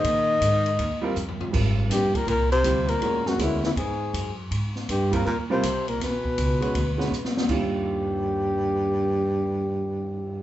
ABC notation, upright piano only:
X:1
M:4/4
L:1/8
Q:"Swing" 1/4=161
K:Eb
V:1 name="Upright piano"
z4 z [G,CFB] z2 | [G,CFB]3 z3 [G,CFG] z | [^G,_D_GB]2 [^G,D_GB] z4 z | z3 [G,CFB] z [G,CFB] z2 |
z3 [^G,_D_G=B] z [^G,D_GB] z2 | [E,,E,G,DF]8- | [E,,E,G,DF]8 |]